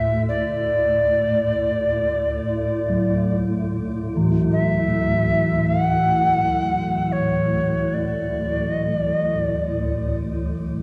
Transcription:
Already playing: D2 A2 A3 E5
0.29 D5
2.90 F#3
4.17 E3
4.52 E5
5.67 F#5
7.12 C#5
7.94 D5
8.62 D2 A2
8.73 D#5
8.95 D5
9.18 D#5
9.39 D5

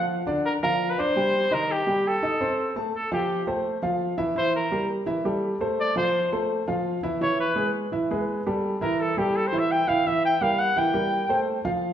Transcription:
Already playing: F3 F4 F5
0.27 D3 D4 D5
0.46 A#4
0.63 F3 F4 A#4 F5
0.90 B4
0.98 D4 C5 D5 D6
1.16 G3 G4 G5
1.51 D#3 D#4 A#4 D#5
1.72 G4
1.87 G3 G4 G5
2.08 A4
2.23 D#4 D#5 D#6
2.41 C4 C5 C6
2.76 A3 A4 A5
2.95 A4
3.12 F3 F4 G4 F5
3.47 A3 A4 C5
3.82 F3 F4 F5
4.18 E3 E4 E5
4.35 E3 E4 C5 E5
4.56 A#4
4.72 G3 G4 A#4
5.06 E3 E4 E5
5.25 G3 G4 A4
5.61 A3 A4 C5
5.80 D5
5.96 F3 F4 C5 F5
6.32 A3 A4 C5
6.68 F3 F4 F5
7.03 E3 E4 E5
7.21 E3 E4 C#5 E5
7.40 B4
7.56 G#3 G#4 B4
7.92 E3 E4 E5
8.11 G#3 G#4 B4
8.47 G3 G4 A4
8.81 E3 E4 A#4 E5
9.01 A4
9.17 G3 G4 A4
9.36 A4
9.47 C5
9.52 E3 E4 E5
9.59 E5
9.71 G5
9.88 E3 E4 E5 F5
10.06 E3 E4 E5
10.25 G5
10.41 G3 G4 A#4 F5
10.59 F#5
10.76 E3 E4 E5 G5
10.94 G3 G4 A#4
11.29 A3 A4 C5
11.65 F3 F4 F5

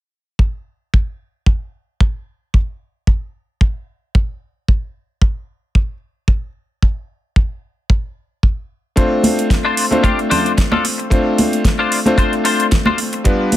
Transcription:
0.39 kick
0.94 kick
1.46 kick
2.00 kick
2.54 kick
3.07 kick
3.61 kick
4.15 kick
4.68 kick
5.22 kick
5.75 kick
6.28 kick
6.82 kick
7.36 kick
7.90 kick
8.43 kick
8.96 A3 C4 D4 F4 C5, kick, closed hi-hat
9.24 open hi-hat, high conga
9.39 closed hi-hat
9.50 kick, snare, closed hi-hat
9.65 D4 F4 C5
9.77 open hi-hat
9.91 A3 C4 D4 F4 C5, high conga
10.03 D4 F4 G4, kick, closed hi-hat
10.19 closed hi-hat
10.30 D4 F4 C5, open hi-hat, low conga
10.46 closed hi-hat
10.58 kick, snare, closed hi-hat
10.72 D4 F4 A4, high conga
10.85 open hi-hat
10.98 muted clean electric guitar stroke, closed hi-hat
11.10 A3 C4 D4 F4 C5, kick, closed hi-hat
11.38 open hi-hat, high conga
11.53 closed hi-hat
11.65 kick, snare, closed hi-hat
11.79 D4 F4 C5
11.92 open hi-hat
12.06 A3 C4 D4 F4 C5, closed hi-hat, high conga
12.18 D4 F4 C5, kick, closed hi-hat
12.33 closed hi-hat
12.45 D4 F4 C5, open hi-hat
12.60 closed hi-hat
12.72 kick, snare, closed hi-hat
12.86 D4 F4 C5, high conga
12.98 open hi-hat
13.13 muted clean electric guitar stroke, closed hi-hat
13.24 G3 B3 D4 F4 B4, kick, closed hi-hat
13.52 open hi-hat, high conga

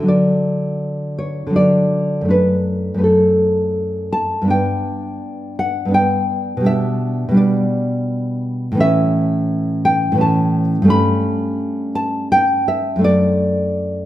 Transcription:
0.00 D3 F#3
0.06 D4 D5
1.18 C#5
1.47 D3 F#3
1.53 D4 D5
2.21 F#2 A3
2.29 D4 B4
2.94 F#2 A3
2.98 D4 B4
3.04 A4
4.13 A5
4.42 G2 B3
4.48 D4 G5
5.59 F#5
5.85 G2 B3
5.91 D4 G5
6.57 B2 G3
6.64 D4 E5
7.29 B2 G3
7.34 D4 D5
8.72 A2 E3
8.78 C#4 E5
9.85 G5
10.12 A2 E3
10.18 C#4 A5
10.82 G2 A3
10.88 C#4 B5
11.95 A5
12.32 G5
12.68 E5
12.96 F#2 A3
13.01 D4 D5

